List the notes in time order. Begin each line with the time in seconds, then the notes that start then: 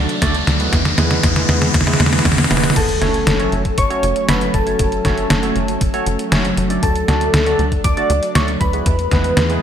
Already playing: F#3 A3 D4, riser
0.09 closed hi-hat
0.22 D2 D3 A3 D4 F#4 A4 D5, kick, snare, closed hi-hat
0.35 closed hi-hat
0.47 D2, snare, closed hi-hat
0.60 G#3 B3 E4 G#4 B4, closed hi-hat
0.73 E2 E3 G#3 B3, kick, snare, closed hi-hat
0.85 snare, closed hi-hat
0.98 E2 G#3 B3 E4 G#4 B4, snare, closed hi-hat
1.11 snare, closed hi-hat
1.23 E2, kick, snare, closed hi-hat
1.36 G#3 B3 E4 G#4 B4, snare, closed hi-hat
1.49 E2, snare, closed hi-hat
1.62 snare, closed hi-hat
1.74 E2, kick, snare, closed hi-hat
1.81 snare
1.87 G#3 B3 E4 G#4 B4, snare, closed hi-hat
1.93 snare
2.00 E2, snare, closed hi-hat
2.06 snare
2.12 G#3 B3 E4 G#4 B4, snare, closed hi-hat
2.19 snare
2.25 E2, kick, snare, closed hi-hat
2.32 snare
2.38 snare, closed hi-hat
2.44 snare
2.51 E1 G#3 B3 E4 G#4 B4, snare, closed hi-hat
2.57 snare
2.63 snare, closed hi-hat
2.70 snare
2.76 F#1 F#3 A3 C#4 A4 A5, kick, closed hi-hat, crash, sub drop
2.89 closed hi-hat
3.01 F#1 A3 C#4 F#4 A4 C#5, snare, closed hi-hat
3.14 closed hi-hat
3.27 F#1, snare, closed hi-hat
3.40 A3 C#4 F#4 A4 C#5, closed hi-hat
3.52 F#1, closed hi-hat
3.65 kick, closed hi-hat
3.78 F#1 C#5 C#6, kick, closed hi-hat
3.90 A3 C#4 F#4 A4 C#5, closed hi-hat
4.03 F#1, closed hi-hat
4.16 closed hi-hat
4.29 F#1 A3 C#4 F#4 A4 B4 C#5 B5, snare, closed hi-hat
4.41 closed hi-hat
4.54 F#1 A4 A5, kick, closed hi-hat
4.67 A3 C#4 F#4 A4 C#5, closed hi-hat
4.79 F#1, kick, closed hi-hat
4.92 closed hi-hat
5.05 F#1 A3 C#4 F#4 A4 C#5, kick, snare, closed hi-hat
5.18 closed hi-hat
5.30 F#1, snare, closed hi-hat
5.43 A3 C#4 F#4 A4 C#5, closed hi-hat
5.56 F#1, closed hi-hat
5.68 closed hi-hat
5.81 F#1, kick, closed hi-hat
5.94 A3 C#4 F#4 A4 C#5, closed hi-hat
6.06 F#1, closed hi-hat
6.19 closed hi-hat
6.32 F#1 A3 C#4 F#4 A4 C#5, snare, closed hi-hat
6.45 closed hi-hat
6.57 F#1, closed hi-hat
6.70 D3 A3 D4 F#4 A4 D5, closed hi-hat
6.83 D2 D4 A4 A5, kick, closed hi-hat
6.96 closed hi-hat
7.08 D2 D3 A3 D4 F#4 A4 D5, snare, closed hi-hat
7.21 closed hi-hat
7.34 D2, snare, closed hi-hat
7.46 D3 A3 D4 F#4 A4 D5, closed hi-hat
7.59 D2, closed hi-hat
7.72 kick, closed hi-hat
7.84 D2 D5 D6, kick, closed hi-hat
7.97 D3 A3 D4 F#4 A4 D5, closed hi-hat
8.10 D2, closed hi-hat
8.23 closed hi-hat
8.35 D2 D3 A3 D4 F#4 A4 C#5 D5 C#6, snare, closed hi-hat
8.48 closed hi-hat
8.60 D2 B4 B5, kick, closed hi-hat
8.73 G#3 B3 E4 G#4 B4, closed hi-hat
8.86 E2 E3 G#3 B3, kick, closed hi-hat
8.99 closed hi-hat
9.11 E2 G#3 B3 E4 G#4 B4, kick, snare, closed hi-hat
9.24 closed hi-hat
9.37 E2, snare, closed hi-hat
9.50 G#3 B3 E4 G#4 B4, closed hi-hat